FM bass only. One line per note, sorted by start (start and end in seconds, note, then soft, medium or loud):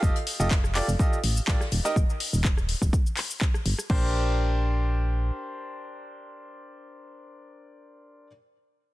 0.03 0.11 F1 loud
0.40 0.81 F1 loud
0.88 0.96 F1 loud
1.24 1.40 A1 medium
1.48 1.56 A1 loud
1.72 1.81 D#1 loud
1.96 2.05 D#1 loud
2.33 2.75 D#1 loud
2.82 2.89 D#1 loud
3.66 3.74 G1 medium
3.90 5.31 A#1 loud